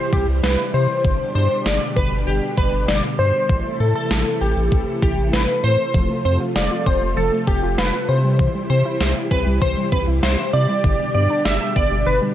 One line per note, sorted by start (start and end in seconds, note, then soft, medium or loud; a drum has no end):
0.00 1.01 C3 medium
0.00 1.02 E3 medium
0.00 3.45 G3 medium
0.00 1.02 E4 medium
0.00 1.02 G4 medium
0.00 0.14 C5 medium
0.00 downlifter medium
0.13 0.26 C2 loud
0.13 0.27 G4 medium
0.13 kick medium
0.28 0.41 C2 medium
0.43 0.57 C2 loud
0.43 0.75 B4 medium
0.43 snare loud
0.74 0.87 C3 loud
0.74 1.34 C5 loud
1.05 1.18 G1 loud
1.05 3.47 B2 medium
1.05 3.47 D3 medium
1.05 3.47 D4 medium
1.05 3.47 G4 medium
1.05 kick loud
1.35 1.48 G2 loud
1.35 1.67 C5 medium
1.66 1.79 G1 loud
1.66 1.97 D5 loud
1.66 snare loud
1.96 2.10 G1 loud
1.96 2.28 B4 medium
1.96 kick medium
2.12 2.25 G1 medium
2.27 2.40 G1 loud
2.27 2.59 G4 medium
2.58 2.71 G1 medium
2.58 2.86 B4 medium
2.58 kick medium
2.73 2.86 G1 loud
2.88 3.02 G1 loud
2.88 3.02 D5 medium
2.88 snare medium
3.19 3.32 G2 medium
3.19 3.76 C5 loud
3.49 3.63 A1 loud
3.49 8.05 C3 medium
3.49 5.92 E3 medium
3.49 8.05 A3 medium
3.49 5.92 E4 medium
3.49 5.92 A4 medium
3.49 kick loud
3.80 3.93 A2 medium
3.80 3.94 A4 medium
3.95 4.43 A4 medium
4.11 4.24 A1 loud
4.11 snare loud
4.41 4.55 A1 loud
4.41 5.01 G4 loud
4.57 4.70 A1 loud
4.72 4.85 A1 loud
4.72 kick medium
5.02 5.16 A1 loud
5.02 5.34 G4 medium
5.02 kick medium
5.18 5.31 A1 medium
5.33 5.46 A1 loud
5.33 5.65 B4 medium
5.33 snare loud
5.64 5.77 A2 loud
5.64 6.24 C5 loud
5.94 6.08 F1 loud
5.94 6.02 F3 medium
5.94 8.07 F3 medium
5.94 8.07 F4 medium
5.94 8.07 A4 medium
5.94 kick loud
6.10 6.18 A3 medium
6.25 6.38 F2 medium
6.25 6.33 C4 medium
6.25 6.39 C5 medium
6.40 6.48 F4 medium
6.56 6.69 F1 loud
6.56 6.87 D5 loud
6.56 6.63 F5 medium
6.56 snare loud
6.71 6.79 F4 medium
6.86 7.00 F1 medium
6.86 6.94 C4 medium
6.86 7.18 C5 loud
6.86 kick medium
7.02 7.15 F1 medium
7.02 7.09 A3 medium
7.17 7.30 F1 loud
7.17 7.25 F3 medium
7.17 7.48 A4 loud
7.32 7.40 A3 medium
7.47 7.61 F1 loud
7.47 7.55 C4 medium
7.47 7.76 G4 medium
7.47 kick medium
7.63 7.76 F1 loud
7.63 7.71 F4 medium
7.78 7.91 F1 loud
7.78 8.10 B4 medium
7.78 7.86 F5 medium
7.78 snare loud
7.93 8.01 F4 medium
8.09 10.81 C3 medium
8.09 8.48 C3 loud
8.09 10.81 E3 medium
8.09 10.81 G3 medium
8.09 8.17 C4 medium
8.09 10.81 E4 medium
8.09 12.34 G4 medium
8.09 8.69 C5 loud
8.24 8.32 G3 medium
8.39 8.47 E3 medium
8.39 kick loud
8.55 8.62 G3 medium
8.70 8.83 C3 loud
8.70 8.78 C4 medium
8.70 8.99 C5 loud
8.85 8.93 E4 medium
9.00 9.14 C2 loud
9.00 9.14 C5 loud
9.00 9.08 E5 medium
9.00 snare loud
9.16 9.24 E4 medium
9.31 9.44 C2 loud
9.31 9.39 C4 medium
9.31 9.63 B4 loud
9.31 kick medium
9.46 9.60 C2 loud
9.46 9.54 G3 medium
9.62 9.75 C2 loud
9.62 9.70 E3 medium
9.62 9.90 C5 loud
9.62 kick medium
9.77 9.85 G3 medium
9.92 10.06 C2 loud
9.92 10.00 C4 medium
9.92 10.06 B4 loud
9.92 kick medium
10.08 10.21 C2 medium
10.08 10.15 E4 medium
10.23 10.36 C2 loud
10.23 10.54 C5 loud
10.23 10.31 E5 loud
10.23 snare loud
10.38 10.46 E4 medium
10.53 10.67 C3 loud
10.53 10.61 C4 medium
10.53 11.13 D5 loud
10.69 10.77 G3 medium
10.84 10.97 G1 loud
10.84 12.34 B2 medium
10.84 12.34 D3 medium
10.84 10.92 D3 medium
10.84 12.34 G3 medium
10.84 12.34 D4 medium
10.84 kick loud
10.99 11.07 G3 medium
11.15 11.28 G2 loud
11.15 11.23 B3 medium
11.15 11.46 D5 loud
11.30 11.38 D4 medium
11.45 11.59 G1 loud
11.45 11.53 D5 medium
11.45 11.77 E5 loud
11.45 snare loud
11.61 11.69 D4 medium
11.76 11.89 G1 loud
11.76 11.84 B3 medium
11.76 12.07 D5 loud
11.76 kick medium
11.91 12.05 G1 medium
11.91 11.99 G3 medium
12.06 12.20 G1 loud
12.06 12.14 D3 medium
12.06 12.20 B4 loud
12.22 12.30 G3 medium